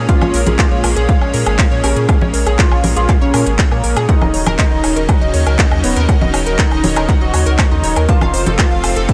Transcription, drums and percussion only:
0.09 kick loud
0.09 closed hi-hat medium
0.22 low conga medium
0.22 low woodblock medium
0.34 open hi-hat loud
0.46 closed hi-hat medium
0.46 low conga medium
0.59 kick loud
0.59 clap loud
0.59 closed hi-hat medium
0.59 low woodblock medium
0.84 open hi-hat loud
0.84 low woodblock medium
0.96 closed hi-hat medium
1.09 kick loud
1.09 closed hi-hat medium
1.21 low woodblock medium
1.34 open hi-hat loud
1.46 closed hi-hat medium
1.46 low woodblock medium
1.59 kick loud
1.59 clap loud
1.59 closed hi-hat medium
1.84 open hi-hat loud
1.84 low woodblock medium
1.96 closed hi-hat medium
2.09 kick loud
2.09 closed hi-hat medium
2.09 low woodblock medium
2.21 low conga medium
2.34 open hi-hat loud
2.47 closed hi-hat medium
2.47 low woodblock medium
2.59 kick loud
2.59 clap loud
2.59 closed hi-hat medium
2.72 low woodblock medium
2.84 open hi-hat loud
2.84 low conga medium
2.97 closed hi-hat medium
3.09 kick loud
3.09 clap soft
3.09 closed hi-hat medium
3.09 low woodblock medium
3.34 open hi-hat loud
3.34 low woodblock medium
3.47 closed hi-hat medium
3.59 kick loud
3.59 clap loud
3.59 closed hi-hat medium
3.71 low woodblock medium
3.84 open hi-hat loud
3.97 closed hi-hat medium
3.97 low woodblock medium
4.09 kick loud
4.09 closed hi-hat medium
4.22 low conga medium
4.22 low woodblock medium
4.34 open hi-hat loud
4.46 closed hi-hat medium
4.46 low conga medium
4.46 low woodblock medium
4.59 kick loud
4.59 clap loud
4.59 closed hi-hat medium
4.84 open hi-hat loud
4.84 low woodblock medium
4.96 closed hi-hat medium
5.09 kick loud
5.09 closed hi-hat medium
5.09 low woodblock medium
5.34 open hi-hat loud
5.47 closed hi-hat medium
5.47 low woodblock medium
5.59 kick loud
5.59 clap loud
5.59 closed hi-hat medium
5.71 low woodblock medium
5.84 open hi-hat loud
5.96 closed hi-hat medium
6.09 kick loud
6.09 closed hi-hat medium
6.09 low woodblock medium
6.21 low conga medium
6.34 open hi-hat loud
6.34 low woodblock medium
6.46 closed hi-hat medium
6.59 kick loud
6.59 clap loud
6.59 closed hi-hat medium
6.71 low woodblock medium
6.84 open hi-hat loud
6.84 low conga medium
6.96 closed hi-hat medium
6.96 low woodblock medium
7.09 kick loud
7.09 clap soft
7.09 closed hi-hat medium
7.34 open hi-hat loud
7.34 low woodblock medium
7.46 closed hi-hat medium
7.59 kick loud
7.59 clap loud
7.59 closed hi-hat medium
7.59 low woodblock medium
7.84 open hi-hat loud
7.96 closed hi-hat medium
7.96 low woodblock medium
8.09 kick loud
8.09 closed hi-hat medium
8.21 low conga medium
8.21 low woodblock medium
8.34 open hi-hat loud
8.46 closed hi-hat medium
8.46 low conga medium
8.59 kick loud
8.59 clap loud
8.59 closed hi-hat medium
8.59 low woodblock medium
8.84 open hi-hat loud
8.84 low woodblock medium
8.96 closed hi-hat medium
9.09 kick loud
9.09 closed hi-hat medium

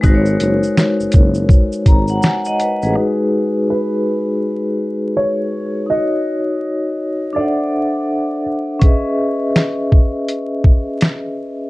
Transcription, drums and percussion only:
0.03 kick medium
0.03 shaker medium
0.26 shaker soft
0.40 closed hi-hat medium
0.40 shaker medium
0.63 shaker soft
0.77 snare loud
0.77 shaker medium
1.00 shaker soft
1.12 kick medium
1.12 closed hi-hat medium
1.12 shaker medium
1.34 shaker soft
1.49 kick medium
1.49 shaker medium
1.72 shaker soft
1.86 kick medium
1.86 closed hi-hat medium
1.86 shaker soft
2.08 shaker soft
2.23 snare loud
2.23 shaker medium
2.45 shaker soft
2.60 closed hi-hat medium
2.60 shaker soft
2.82 shaker soft
8.82 kick loud
8.82 closed hi-hat medium
9.56 snare loud
9.56 closed hi-hat medium
9.92 kick medium
10.29 closed hi-hat medium
10.64 kick medium
11.01 snare loud
11.01 closed hi-hat medium

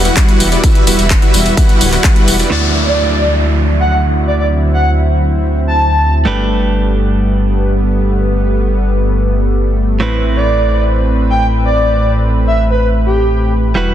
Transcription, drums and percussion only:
0.05 closed hi-hat soft
0.05 tambourine soft
0.17 kick loud
0.17 clap loud
0.17 closed hi-hat medium
0.17 tambourine soft
0.29 closed hi-hat soft
0.29 tambourine soft
0.40 open hi-hat loud
0.40 tambourine medium
0.52 closed hi-hat soft
0.52 tambourine soft
0.64 kick loud
0.64 closed hi-hat medium
0.64 tambourine soft
0.75 closed hi-hat soft
0.75 tambourine soft
0.87 open hi-hat loud
0.87 tambourine medium
0.99 closed hi-hat soft
0.99 tambourine soft
1.10 kick loud
1.10 clap loud
1.10 closed hi-hat medium
1.10 tambourine soft
1.22 closed hi-hat soft
1.22 tambourine soft
1.34 open hi-hat loud
1.34 tambourine medium
1.46 closed hi-hat soft
1.46 tambourine soft
1.57 kick loud
1.57 closed hi-hat medium
1.57 tambourine soft
1.69 closed hi-hat soft
1.69 tambourine soft
1.81 open hi-hat loud
1.81 tambourine medium
1.92 clap soft
1.92 closed hi-hat soft
1.92 tambourine soft
2.04 kick loud
2.04 clap loud
2.04 closed hi-hat medium
2.04 tambourine soft
2.16 closed hi-hat soft
2.16 tambourine soft
2.28 open hi-hat loud
2.28 tambourine medium
2.39 closed hi-hat soft
2.39 tambourine soft

